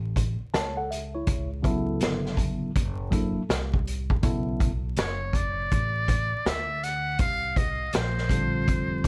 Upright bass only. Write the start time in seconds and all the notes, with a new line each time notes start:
Already playing: A1
0.41 muted upright bass stroke
0.54 C#2
1.27 C#2
2.01 G1
2.76 F#1
3.37 muted upright bass stroke
3.49 C2
4.24 B1
4.97 F#1
5.72 A1
6.33 muted upright bass stroke
6.45 D2
7.19 C2
7.93 A#1
8.68 F1